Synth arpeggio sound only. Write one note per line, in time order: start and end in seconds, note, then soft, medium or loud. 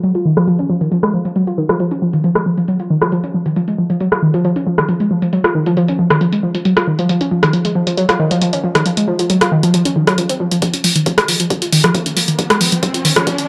0.03 0.10 F#3 medium
0.15 0.25 F4 medium
0.25 0.30 D#3 loud
0.37 0.46 F3 loud
0.47 0.54 F3 loud
0.59 0.65 C#4 medium
0.70 0.74 F3 medium
0.81 0.87 D#3 medium
0.92 0.96 F3 medium
1.03 1.09 G#3 medium
1.14 1.21 F3 medium
1.25 1.32 F3 medium
1.36 1.43 F#3 medium
1.47 1.57 F4 medium
1.58 1.62 D#3 loud
1.69 1.79 F3 loud
1.80 1.87 F3 loud
1.91 1.98 C#4 medium
2.02 2.06 F3 medium
2.14 2.20 D#3 medium
2.24 2.28 F3 medium
2.36 2.42 G#3 medium
2.46 2.53 F3 medium
2.58 2.64 F3 medium
2.68 2.75 F#3 medium
2.80 2.89 F4 medium
2.90 2.94 D#3 loud
3.02 3.11 F3 loud
3.12 3.19 F3 loud
3.24 3.30 C#4 medium
3.34 3.38 F3 medium
3.46 3.52 D#3 medium
3.56 3.61 F3 medium
3.68 3.74 G#3 medium
3.78 3.85 F3 medium
3.90 3.96 F3 medium
4.00 4.07 F#3 medium
4.12 4.22 F4 medium
4.23 4.27 D#3 loud
4.34 4.43 F3 loud
4.45 4.52 F3 loud
4.56 4.62 C#4 medium
4.67 4.71 F3 medium
4.78 4.85 D#3 medium
4.89 4.93 F3 medium
5.00 5.07 G#3 medium
5.11 5.18 F3 medium
5.22 5.29 F3 medium
5.33 5.40 F#3 medium
5.44 5.54 F4 medium
5.55 5.59 D#3 loud
5.66 5.76 F3 loud
5.77 5.84 F3 loud
5.88 5.95 C#4 medium
5.99 6.03 F3 medium
6.11 6.17 D#3 medium
6.21 6.25 F3 medium
6.33 6.39 G#3 medium
6.43 6.50 F3 medium
6.55 6.61 F3 medium
6.65 6.72 F#3 medium
6.77 6.86 F4 medium
6.87 6.91 D#3 loud
6.99 7.08 F3 loud
7.09 7.16 F3 loud
7.21 7.27 C#4 medium
7.31 7.36 F3 medium
7.43 7.49 D#3 medium
7.53 7.58 F3 medium
7.65 7.71 G#3 medium
7.75 7.82 F3 medium
7.87 7.93 F3 medium
7.97 8.04 F#3 medium
8.09 8.19 F4 medium
8.20 8.24 D#3 loud
8.31 8.40 F3 loud
8.42 8.49 F3 medium
8.53 8.60 C#4 medium
8.64 8.68 F3 medium
8.75 8.82 D#3 medium
8.86 8.90 F3 medium
8.97 9.04 G#3 medium
9.08 9.15 F3 medium
9.19 9.26 F3 medium
9.30 9.37 F#3 medium
9.41 9.51 F4 medium
9.52 9.56 D#3 loud
9.63 9.73 F3 loud
9.74 9.81 F3 loud
9.85 9.92 C#4 medium
9.96 10.00 D#3 medium
10.07 10.14 F#3 loud
10.18 10.25 F3 medium
10.30 10.39 C4 medium
10.40 10.50 F3 medium
10.52 10.61 F3 medium
10.62 10.69 F3 loud
10.74 10.80 C#4 medium
10.84 10.88 F3 medium
10.96 11.02 D#3 medium
11.06 11.10 F3 medium
11.18 11.24 G#3 medium
11.28 11.35 F3 medium
11.40 11.46 F3 medium
11.50 11.57 F#3 medium
11.62 11.72 F4 medium
11.73 11.77 D#3 loud
11.84 11.93 F3 loud
11.95 12.02 F3 loud
12.06 12.12 C#4 medium
12.17 12.21 F3 medium
12.28 12.35 D#3 medium
12.39 12.43 F3 medium
12.50 12.57 G#3 medium
12.61 12.68 F3 medium
12.72 12.79 F3 medium
12.83 12.90 F#3 medium
12.94 13.04 F4 medium
13.05 13.09 D#3 loud
13.16 13.26 F3 loud
13.27 13.34 F3 loud
13.38 13.45 C#4 medium